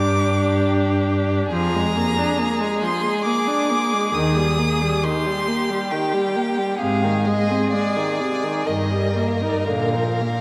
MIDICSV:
0, 0, Header, 1, 5, 480
1, 0, Start_track
1, 0, Key_signature, -3, "major"
1, 0, Tempo, 863309
1, 850, Time_signature, 3, 2, 24, 8
1, 1810, Tempo, 888889
1, 3730, Tempo, 931677
1, 4690, Tempo, 1029160
1, 5499, End_track
2, 0, Start_track
2, 0, Title_t, "Violin"
2, 0, Program_c, 0, 40
2, 0, Note_on_c, 0, 86, 66
2, 367, Note_off_c, 0, 86, 0
2, 856, Note_on_c, 0, 82, 70
2, 1547, Note_off_c, 0, 82, 0
2, 1559, Note_on_c, 0, 84, 73
2, 1802, Note_off_c, 0, 84, 0
2, 1808, Note_on_c, 0, 86, 77
2, 2288, Note_on_c, 0, 87, 69
2, 2296, Note_off_c, 0, 86, 0
2, 2772, Note_on_c, 0, 84, 82
2, 2780, Note_off_c, 0, 87, 0
2, 3245, Note_on_c, 0, 79, 65
2, 3253, Note_off_c, 0, 84, 0
2, 3725, Note_on_c, 0, 77, 60
2, 3733, Note_off_c, 0, 79, 0
2, 3960, Note_on_c, 0, 75, 62
2, 3968, Note_off_c, 0, 77, 0
2, 4200, Note_off_c, 0, 75, 0
2, 4203, Note_on_c, 0, 74, 61
2, 4687, Note_on_c, 0, 75, 57
2, 4695, Note_off_c, 0, 74, 0
2, 4972, Note_on_c, 0, 77, 42
2, 4979, Note_off_c, 0, 75, 0
2, 5018, Note_on_c, 0, 75, 47
2, 5025, Note_off_c, 0, 77, 0
2, 5068, Note_on_c, 0, 74, 46
2, 5075, Note_off_c, 0, 75, 0
2, 5118, Note_on_c, 0, 75, 47
2, 5125, Note_off_c, 0, 74, 0
2, 5165, Note_off_c, 0, 75, 0
2, 5169, Note_on_c, 0, 77, 55
2, 5499, Note_off_c, 0, 77, 0
2, 5499, End_track
3, 0, Start_track
3, 0, Title_t, "Violin"
3, 0, Program_c, 1, 40
3, 0, Note_on_c, 1, 67, 49
3, 830, Note_off_c, 1, 67, 0
3, 847, Note_on_c, 1, 68, 52
3, 2774, Note_on_c, 1, 67, 51
3, 2782, Note_off_c, 1, 68, 0
3, 3726, Note_off_c, 1, 67, 0
3, 3729, Note_on_c, 1, 68, 53
3, 4682, Note_on_c, 1, 70, 45
3, 4690, Note_off_c, 1, 68, 0
3, 5499, Note_off_c, 1, 70, 0
3, 5499, End_track
4, 0, Start_track
4, 0, Title_t, "Viola"
4, 0, Program_c, 2, 41
4, 0, Note_on_c, 2, 62, 55
4, 828, Note_off_c, 2, 62, 0
4, 856, Note_on_c, 2, 53, 54
4, 978, Note_on_c, 2, 56, 46
4, 986, Note_off_c, 2, 53, 0
4, 1097, Note_on_c, 2, 58, 44
4, 1106, Note_off_c, 2, 56, 0
4, 1212, Note_on_c, 2, 62, 48
4, 1220, Note_off_c, 2, 58, 0
4, 1327, Note_on_c, 2, 58, 51
4, 1335, Note_off_c, 2, 62, 0
4, 1448, Note_on_c, 2, 56, 44
4, 1456, Note_off_c, 2, 58, 0
4, 1571, Note_on_c, 2, 53, 48
4, 1579, Note_off_c, 2, 56, 0
4, 1687, Note_on_c, 2, 56, 47
4, 1695, Note_off_c, 2, 53, 0
4, 1812, Note_on_c, 2, 58, 47
4, 1820, Note_off_c, 2, 56, 0
4, 1929, Note_on_c, 2, 62, 51
4, 1937, Note_off_c, 2, 58, 0
4, 2055, Note_on_c, 2, 58, 45
4, 2063, Note_off_c, 2, 62, 0
4, 2175, Note_on_c, 2, 56, 46
4, 2183, Note_off_c, 2, 58, 0
4, 2291, Note_off_c, 2, 56, 0
4, 2294, Note_on_c, 2, 51, 51
4, 2409, Note_on_c, 2, 55, 42
4, 2417, Note_off_c, 2, 51, 0
4, 2528, Note_on_c, 2, 58, 44
4, 2536, Note_off_c, 2, 55, 0
4, 2653, Note_on_c, 2, 55, 43
4, 2661, Note_off_c, 2, 58, 0
4, 2771, Note_on_c, 2, 51, 49
4, 2780, Note_off_c, 2, 55, 0
4, 2895, Note_on_c, 2, 55, 43
4, 2903, Note_off_c, 2, 51, 0
4, 3009, Note_on_c, 2, 58, 43
4, 3017, Note_off_c, 2, 55, 0
4, 3128, Note_on_c, 2, 55, 44
4, 3136, Note_off_c, 2, 58, 0
4, 3248, Note_on_c, 2, 51, 45
4, 3256, Note_off_c, 2, 55, 0
4, 3365, Note_on_c, 2, 55, 46
4, 3373, Note_off_c, 2, 51, 0
4, 3490, Note_on_c, 2, 58, 45
4, 3498, Note_off_c, 2, 55, 0
4, 3607, Note_on_c, 2, 55, 42
4, 3615, Note_off_c, 2, 58, 0
4, 3729, Note_off_c, 2, 55, 0
4, 3734, Note_on_c, 2, 48, 43
4, 3848, Note_on_c, 2, 51, 36
4, 3856, Note_off_c, 2, 48, 0
4, 3965, Note_on_c, 2, 56, 41
4, 3972, Note_off_c, 2, 51, 0
4, 4089, Note_on_c, 2, 60, 38
4, 4097, Note_off_c, 2, 56, 0
4, 4204, Note_on_c, 2, 56, 43
4, 4212, Note_off_c, 2, 60, 0
4, 4324, Note_on_c, 2, 51, 37
4, 4331, Note_off_c, 2, 56, 0
4, 4449, Note_on_c, 2, 48, 38
4, 4457, Note_off_c, 2, 51, 0
4, 4569, Note_on_c, 2, 51, 43
4, 4576, Note_off_c, 2, 48, 0
4, 4689, Note_off_c, 2, 51, 0
4, 4692, Note_on_c, 2, 51, 35
4, 4801, Note_on_c, 2, 55, 38
4, 4808, Note_off_c, 2, 51, 0
4, 4917, Note_on_c, 2, 58, 39
4, 4924, Note_off_c, 2, 55, 0
4, 5038, Note_on_c, 2, 63, 35
4, 5045, Note_off_c, 2, 58, 0
4, 5158, Note_off_c, 2, 63, 0
4, 5161, Note_on_c, 2, 50, 41
4, 5286, Note_on_c, 2, 53, 36
4, 5293, Note_off_c, 2, 50, 0
4, 5410, Note_on_c, 2, 58, 35
4, 5417, Note_off_c, 2, 53, 0
4, 5499, Note_off_c, 2, 58, 0
4, 5499, End_track
5, 0, Start_track
5, 0, Title_t, "Cello"
5, 0, Program_c, 3, 42
5, 0, Note_on_c, 3, 43, 54
5, 825, Note_off_c, 3, 43, 0
5, 845, Note_on_c, 3, 41, 56
5, 1246, Note_off_c, 3, 41, 0
5, 2288, Note_on_c, 3, 39, 56
5, 2686, Note_off_c, 3, 39, 0
5, 3731, Note_on_c, 3, 44, 52
5, 4125, Note_off_c, 3, 44, 0
5, 4688, Note_on_c, 3, 43, 44
5, 5079, Note_off_c, 3, 43, 0
5, 5160, Note_on_c, 3, 46, 44
5, 5499, Note_off_c, 3, 46, 0
5, 5499, End_track
0, 0, End_of_file